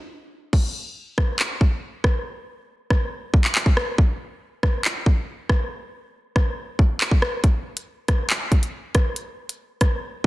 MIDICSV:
0, 0, Header, 1, 2, 480
1, 0, Start_track
1, 0, Tempo, 431655
1, 590, Time_signature, 4, 2, 24, 8
1, 11415, End_track
2, 0, Start_track
2, 0, Title_t, "Drums"
2, 589, Note_on_c, 9, 36, 116
2, 589, Note_on_c, 9, 49, 93
2, 701, Note_off_c, 9, 36, 0
2, 701, Note_off_c, 9, 49, 0
2, 1309, Note_on_c, 9, 36, 92
2, 1310, Note_on_c, 9, 37, 102
2, 1421, Note_off_c, 9, 36, 0
2, 1421, Note_off_c, 9, 37, 0
2, 1549, Note_on_c, 9, 39, 114
2, 1660, Note_off_c, 9, 39, 0
2, 1790, Note_on_c, 9, 36, 102
2, 1901, Note_off_c, 9, 36, 0
2, 2269, Note_on_c, 9, 36, 93
2, 2270, Note_on_c, 9, 37, 102
2, 2380, Note_off_c, 9, 36, 0
2, 2382, Note_off_c, 9, 37, 0
2, 3230, Note_on_c, 9, 36, 90
2, 3230, Note_on_c, 9, 37, 100
2, 3341, Note_off_c, 9, 36, 0
2, 3341, Note_off_c, 9, 37, 0
2, 3710, Note_on_c, 9, 36, 101
2, 3821, Note_off_c, 9, 36, 0
2, 3831, Note_on_c, 9, 39, 66
2, 3942, Note_off_c, 9, 39, 0
2, 3950, Note_on_c, 9, 39, 104
2, 4062, Note_off_c, 9, 39, 0
2, 4070, Note_on_c, 9, 36, 102
2, 4182, Note_off_c, 9, 36, 0
2, 4191, Note_on_c, 9, 37, 104
2, 4302, Note_off_c, 9, 37, 0
2, 4430, Note_on_c, 9, 36, 114
2, 4541, Note_off_c, 9, 36, 0
2, 5150, Note_on_c, 9, 36, 91
2, 5150, Note_on_c, 9, 37, 104
2, 5261, Note_off_c, 9, 36, 0
2, 5261, Note_off_c, 9, 37, 0
2, 5390, Note_on_c, 9, 39, 114
2, 5502, Note_off_c, 9, 39, 0
2, 5630, Note_on_c, 9, 36, 99
2, 5741, Note_off_c, 9, 36, 0
2, 6110, Note_on_c, 9, 36, 94
2, 6111, Note_on_c, 9, 37, 101
2, 6221, Note_off_c, 9, 36, 0
2, 6222, Note_off_c, 9, 37, 0
2, 7070, Note_on_c, 9, 36, 93
2, 7070, Note_on_c, 9, 37, 102
2, 7181, Note_off_c, 9, 36, 0
2, 7181, Note_off_c, 9, 37, 0
2, 7550, Note_on_c, 9, 36, 99
2, 7662, Note_off_c, 9, 36, 0
2, 7791, Note_on_c, 9, 39, 105
2, 7902, Note_off_c, 9, 39, 0
2, 7911, Note_on_c, 9, 36, 100
2, 8022, Note_off_c, 9, 36, 0
2, 8031, Note_on_c, 9, 37, 107
2, 8143, Note_off_c, 9, 37, 0
2, 8270, Note_on_c, 9, 36, 117
2, 8270, Note_on_c, 9, 42, 82
2, 8381, Note_off_c, 9, 36, 0
2, 8381, Note_off_c, 9, 42, 0
2, 8637, Note_on_c, 9, 42, 81
2, 8749, Note_off_c, 9, 42, 0
2, 8989, Note_on_c, 9, 42, 73
2, 8990, Note_on_c, 9, 36, 92
2, 8991, Note_on_c, 9, 37, 96
2, 9100, Note_off_c, 9, 42, 0
2, 9101, Note_off_c, 9, 36, 0
2, 9102, Note_off_c, 9, 37, 0
2, 9230, Note_on_c, 9, 39, 117
2, 9233, Note_on_c, 9, 42, 78
2, 9341, Note_off_c, 9, 39, 0
2, 9344, Note_off_c, 9, 42, 0
2, 9470, Note_on_c, 9, 36, 101
2, 9471, Note_on_c, 9, 42, 69
2, 9581, Note_off_c, 9, 36, 0
2, 9582, Note_off_c, 9, 42, 0
2, 9595, Note_on_c, 9, 42, 88
2, 9706, Note_off_c, 9, 42, 0
2, 9947, Note_on_c, 9, 42, 74
2, 9950, Note_on_c, 9, 36, 98
2, 9951, Note_on_c, 9, 37, 100
2, 10059, Note_off_c, 9, 42, 0
2, 10061, Note_off_c, 9, 36, 0
2, 10062, Note_off_c, 9, 37, 0
2, 10189, Note_on_c, 9, 42, 85
2, 10300, Note_off_c, 9, 42, 0
2, 10557, Note_on_c, 9, 42, 82
2, 10668, Note_off_c, 9, 42, 0
2, 10908, Note_on_c, 9, 42, 74
2, 10910, Note_on_c, 9, 36, 88
2, 10910, Note_on_c, 9, 37, 98
2, 11019, Note_off_c, 9, 42, 0
2, 11021, Note_off_c, 9, 36, 0
2, 11021, Note_off_c, 9, 37, 0
2, 11415, End_track
0, 0, End_of_file